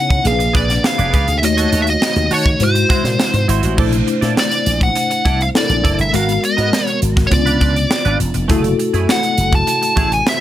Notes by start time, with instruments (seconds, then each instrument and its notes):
Already playing: slap bass C#3, tine electric piano B3 D#4 E4 C#5, lead electric guitar F#5
0.10 muted clean electric guitar stroke, kick, closed hi-hat
0.24 slap bass A#1, tine electric piano A#3 C#4 G#4 B4, lead electric guitar F5, closed hi-hat
0.32 tine electric piano D4
0.39 muted clean electric guitar stroke, closed hi-hat
0.53 slap bass A#1, clean electric guitar G#4 B4 D5, lead electric guitar D5, kick, snare, closed hi-hat
0.68 muted clean electric guitar stroke, snare, closed hi-hat
0.83 lead electric guitar F5, muted clean electric guitar stroke, snare
0.98 slap bass F1, clean electric guitar G#4 B4 D5, closed hi-hat
1.13 slap bass C#2, clean electric guitar G#4 B4 D5, kick, closed hi-hat
1.28 slap bass D2, muted clean electric guitar stroke, closed hi-hat
1.38 lead electric guitar E5
1.42 slap bass D#2, tine electric piano A3 D#4 F#4 C#5, lead electric guitar D#5, muted clean electric guitar stroke, closed hi-hat
1.57 clean electric guitar F#4 A4 C#5, closed hi-hat
1.72 slap bass D#2, clean electric guitar F#4 A4 C#5, closed hi-hat
1.82 lead electric guitar E5
1.87 lead electric guitar D#5, muted clean electric guitar stroke, closed hi-hat
2.02 muted clean electric guitar stroke, snare
2.16 slap bass D#2, muted clean electric guitar stroke, closed hi-hat
2.31 slap bass D#3, clean electric guitar F#4 A4 C#5, lead electric guitar C#5, open hi-hat
2.45 muted clean electric guitar stroke, kick
2.59 slap bass G#2, tine electric piano G#3 E4 F#4 C5, closed hi-hat
2.64 lead electric guitar C5
2.75 muted clean electric guitar stroke, closed hi-hat
2.89 clean electric guitar E4 F#4 C5, kick, snare, closed hi-hat
3.04 slap bass A#2, muted clean electric guitar stroke, snare, closed hi-hat
3.19 muted clean electric guitar stroke, snare
3.34 slap bass G#2, muted clean electric guitar stroke, closed hi-hat
3.48 slap bass G#1, clean electric guitar E4 F#4 C5, closed hi-hat
3.63 slap bass A1, clean electric guitar E4 F#4 C5, closed hi-hat
3.77 slap bass A#1, tine electric piano A3 D4 E4 C5, clean electric guitar E4 A4 D5, kick, crash
3.92 muted clean electric guitar stroke, closed hi-hat
4.07 muted clean electric guitar stroke, closed hi-hat
4.21 slap bass A#2, clean electric guitar E4 A4 D5, snare, closed hi-hat
4.37 lead electric guitar D5, muted clean electric guitar stroke, snare
4.51 muted clean electric guitar stroke, closed hi-hat
4.66 slap bass A#1, closed hi-hat
4.81 lead electric guitar F#5, muted clean electric guitar stroke, kick, closed hi-hat
4.95 muted clean electric guitar stroke, closed hi-hat
5.10 muted clean electric guitar stroke, closed hi-hat
5.25 slap bass C2, clean electric guitar E4 A4 D5, kick, closed hi-hat
5.40 lead electric guitar F5, muted clean electric guitar stroke, closed hi-hat
5.55 tine electric piano D4 E4 A4, lead electric guitar D5, snare
5.62 tine electric piano A#4
5.69 slap bass A#1, muted clean electric guitar stroke, closed hi-hat
5.84 slap bass F#1, clean electric guitar E4 A4 D5, kick, closed hi-hat
5.99 slap bass G1, lead electric guitar E5, muted clean electric guitar stroke, closed hi-hat
6.13 slap bass G#1, tine electric piano G#3 B3 F#4 A#4, clean electric guitar B3 F#4 A#4, lead electric guitar F5, closed hi-hat
6.28 muted clean electric guitar stroke, closed hi-hat
6.43 lead electric guitar D#5, muted clean electric guitar stroke, closed hi-hat
6.57 slap bass G#2, clean electric guitar B3 F#4 A#4, closed hi-hat
6.72 muted clean electric guitar stroke, snare
6.87 lead electric guitar C#5, muted clean electric guitar stroke, closed hi-hat
7.02 slap bass G#1, closed hi-hat
7.16 muted clean electric guitar stroke, kick, snare, closed hi-hat
7.27 tine electric piano B3, lead electric guitar C#5
7.31 slap bass C#2, tine electric piano D4 F4 C5, lead electric guitar D5, muted clean electric guitar stroke, kick, closed hi-hat
7.39 tine electric piano C#4
7.46 clean electric guitar D4 F4 B4, closed hi-hat
7.61 slap bass C#2, clean electric guitar D4 F4 B4, kick, closed hi-hat
7.75 muted clean electric guitar stroke, closed hi-hat
7.90 muted clean electric guitar stroke, snare
8.05 slap bass G#1, clean electric guitar D4 F4 B4, closed hi-hat
8.19 slap bass E1, muted clean electric guitar stroke, closed hi-hat
8.34 slap bass F1, muted clean electric guitar stroke, closed hi-hat
8.48 slap bass F#1, tine electric piano A3 E4 F#4 A4, clean electric guitar A3 E4 G#4, kick, closed hi-hat
8.64 muted clean electric guitar stroke, closed hi-hat
8.79 muted clean electric guitar stroke, closed hi-hat
8.93 slap bass F#2, clean electric guitar A3 E4 G#4, closed hi-hat
9.08 lead electric guitar F#5, muted clean electric guitar stroke, snare
9.23 muted clean electric guitar stroke, closed hi-hat
9.38 slap bass F#1, closed hi-hat
9.53 lead electric guitar A5, muted clean electric guitar stroke, kick, closed hi-hat
9.67 muted clean electric guitar stroke, closed hi-hat
9.82 muted clean electric guitar stroke, closed hi-hat
9.96 slap bass A1, clean electric guitar A3 E4 G#4, kick, closed hi-hat
10.11 lead electric guitar G#5, muted clean electric guitar stroke, closed hi-hat
10.27 lead electric guitar E5, snare